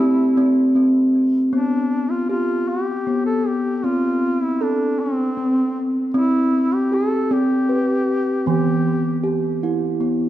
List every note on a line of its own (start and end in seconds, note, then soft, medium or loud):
0.00 0.29 C4 medium
0.00 0.75 E4 medium
0.00 0.75 G4 medium
0.37 0.74 C4 medium
0.75 1.52 C4 medium
1.51 2.30 B3 medium
1.51 2.12 D4 medium
2.10 2.29 F4 medium
2.29 2.70 F4 medium
2.29 3.06 G4 medium
2.68 3.25 G4 medium
3.07 3.84 B3 medium
3.26 3.49 A4 medium
3.47 3.77 G4 medium
3.77 3.87 G4 medium
3.84 4.61 C4 medium
3.84 4.44 F4 medium
4.43 4.64 E4 medium
4.61 5.01 D4 medium
4.61 5.38 A4 medium
5.00 5.86 C4 medium
5.37 6.13 C4 medium
6.14 7.08 C4 medium
6.14 6.76 E4 medium
6.74 6.96 G4 medium
6.92 7.69 G4 medium
6.92 7.34 A4 medium
7.31 8.24 C4 medium
7.31 8.47 G4 medium
7.69 8.46 B4 medium
8.46 9.40 E3 medium
8.46 9.24 B3 medium
8.46 9.30 G4 medium
9.24 10.01 G4 medium
9.63 10.29 E4 medium
10.00 10.29 B3 medium